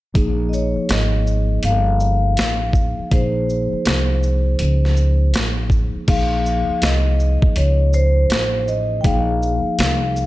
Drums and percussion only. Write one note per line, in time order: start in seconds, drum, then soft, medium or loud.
0.15 kick loud
0.15 closed hi-hat medium
0.53 shaker soft
0.89 snare loud
0.89 closed hi-hat medium
1.27 shaker soft
1.63 closed hi-hat medium
2.00 shaker soft
2.37 snare loud
2.37 closed hi-hat medium
2.73 kick medium
2.73 shaker soft
3.11 kick loud
3.11 closed hi-hat medium
3.50 shaker soft
3.85 snare loud
3.85 closed hi-hat medium
4.23 shaker soft
4.59 closed hi-hat medium
4.85 snare soft
4.97 shaker medium
5.34 snare loud
5.34 closed hi-hat medium
5.70 kick medium
5.70 shaker soft
6.08 kick loud
6.08 closed hi-hat medium
6.08 crash medium
6.46 shaker soft
6.82 snare loud
6.82 closed hi-hat medium
7.20 shaker soft
7.42 kick medium
7.56 closed hi-hat medium
7.93 shaker medium
8.30 snare loud
8.30 closed hi-hat medium
8.68 shaker soft
9.04 kick loud
9.04 closed hi-hat medium
9.42 shaker medium
9.79 snare loud
9.79 closed hi-hat medium
10.16 shaker soft